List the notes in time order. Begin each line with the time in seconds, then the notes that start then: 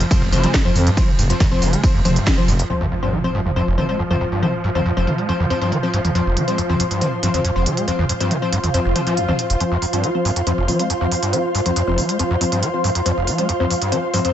Already playing: F3
0.00 F2, closed hi-hat
0.11 F2 F3 C4 C5, kick, closed hi-hat, mid tom, ride, tambourine
0.22 F1, snare
0.32 F1 F3 C4 C5, open hi-hat, tambourine
0.43 F3 G#3 C4 C5, snare, closed hi-hat, mid tom
0.54 F2, kick, snare, closed hi-hat, ride, tambourine
0.65 F2 F3 C4 C5
0.76 F2, mid tom, open hi-hat, tambourine
0.87 G2, closed hi-hat
0.97 F3 C4 C5, kick, closed hi-hat, ride, tambourine
1.08 mid tom
1.19 F1 G2, open hi-hat, tambourine
1.30 F2 F3 C4 C5, closed hi-hat
1.40 F2, kick, snare, closed hi-hat, mid tom, ride, tambourine
1.51 F1 F3 C4 C5
1.62 F1 F3, snare, open hi-hat, tambourine
1.73 G#3, closed hi-hat, mid tom
1.83 F2 F3 C4 C5, kick, closed hi-hat, ride, tambourine
1.94 F1 F2
2.05 F1 F2 F3 C4 C5, mid tom, open hi-hat, tambourine
2.16 G2, closed hi-hat
2.27 F3, kick, snare, closed hi-hat, ride, tambourine
2.38 F3 C4 C5, mid tom
2.48 F1 G2, open hi-hat, tambourine
2.59 F2, closed hi-hat
2.70 F2 F3 C4 F4 C5, impact
2.75 C5
2.81 F2, mid tom
2.91 F2, closed hi-hat
3.02 G2 F3 C4 C5 F5
3.13 F3 C6, mid tom
3.24 F3 C4 C5
3.35 G2, closed hi-hat
3.46 F2, closed hi-hat, mid tom
3.56 F2 F3 C4 C5, closed hi-hat
3.67 F1
3.78 F3 C4 C5, closed hi-hat, mid tom
3.89 F3 G#3 C4 C5, closed hi-hat
3.99 F2, closed hi-hat
4.10 F2 F3 C4 C5, mid tom
4.21 F2, closed hi-hat
4.32 G2, closed hi-hat
4.43 F3 C4 C5, closed hi-hat, mid tom
4.64 G2, closed hi-hat
4.75 F2 F3 C4 C5, closed hi-hat, mid tom
4.86 F2, closed hi-hat
4.97 F1 F3 C4 C5
5.07 F3, closed hi-hat, mid tom
5.18 G#3, closed hi-hat
5.29 F2 F3 C4 C5, closed hi-hat
5.40 F2, mid tom
5.50 F2 F3 C4 C5, closed hi-hat
5.61 G2 F3 C4 C5, closed hi-hat
5.72 F3, closed hi-hat, mid tom
5.83 F3 C4 C5
5.94 G2, closed hi-hat
6.05 F2, closed hi-hat, mid tom
6.15 F2 F3 C4 C5, closed hi-hat
6.26 F1
6.37 F3, closed hi-hat, mid tom
6.48 F3 G#3 C4 C5, closed hi-hat
6.58 F2, closed hi-hat
6.69 F2 F3 C4 C5, mid tom
6.80 F2, closed hi-hat
6.91 G2, closed hi-hat
7.01 F3 C4 C5, closed hi-hat, mid tom
7.23 G2 F3 C4 C5, closed hi-hat
7.34 F2 F3 C4 C5, closed hi-hat, mid tom
7.45 F2, closed hi-hat
7.56 F1 F3 C4 C5
7.66 F3, closed hi-hat, mid tom
7.77 G#3, closed hi-hat
7.88 F2 F3 C4 C5, closed hi-hat
7.99 F2, mid tom
8.09 F2, closed hi-hat
8.20 G2 F3 C4 C5, closed hi-hat
8.31 F3, closed hi-hat, mid tom
8.42 F3 C4 C5
8.53 G2, closed hi-hat
8.64 F2, closed hi-hat, mid tom
8.74 F2 F3 C4 C5, closed hi-hat, swell
8.85 F1
8.96 F3 C4 C5, closed hi-hat, mid tom
9.07 F3 C4 C5, closed hi-hat
9.17 F2, closed hi-hat
9.28 F2 F3 C4 C5, mid tom
9.39 closed hi-hat
9.50 F1, closed hi-hat
9.60 F2 F3 C4 C5, closed hi-hat
9.72 F2
9.82 F2, open hi-hat
9.93 G2 F3 C4 C5, closed hi-hat
10.04 F3, closed hi-hat
10.15 F3 C4 C5
10.25 G2, open hi-hat
10.36 F2, closed hi-hat
10.47 F2 F3 C4 C5, closed hi-hat
10.58 F1
10.68 F3 C4 C5, open hi-hat
10.79 F3 G#3 C4 C5, closed hi-hat
10.90 F2, closed hi-hat
11.01 F2 F3 C4 C5
11.11 F2, open hi-hat
11.23 G2, closed hi-hat
11.33 F3 C4 C5, closed hi-hat
11.55 G2, open hi-hat
11.66 F2 F3 C4 C5, closed hi-hat
11.76 F2, closed hi-hat
11.87 F1 F3 C4 C5
11.98 F3, open hi-hat
12.09 G#3, closed hi-hat
12.19 F2 F3 C4 C5, closed hi-hat
12.30 F2
12.41 F2 F3 C4 C5, open hi-hat
12.52 G2 F3 C4 C5, closed hi-hat
12.62 F3, closed hi-hat
12.74 F3 C4 C5
12.84 G2, open hi-hat
12.95 F2, closed hi-hat
13.06 F2 F3 C4 C5, closed hi-hat
13.17 F1
13.27 F3, open hi-hat
13.38 F3 G#3 C4 C5, closed hi-hat
13.49 F2, closed hi-hat
13.60 F2 F3 C4 C5
13.71 F2, open hi-hat
13.82 G2, closed hi-hat
13.92 F3 C4 C5, closed hi-hat
14.14 G2 F3 C4 C5, open hi-hat
14.25 F2 F3 C4 C5, closed hi-hat